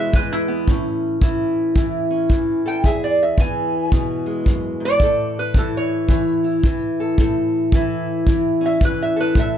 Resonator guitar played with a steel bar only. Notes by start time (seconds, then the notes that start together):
Already playing: E5
0.16 B4
0.33 E4
2.67 G5
2.85 E5
3.04 D5
3.23 E5
3.40 G#5
4.85 D5
5.39 B4
5.58 A4
5.77 C#5
8.66 E5
8.85 B4
9.02 E5
9.21 B4
9.39 E5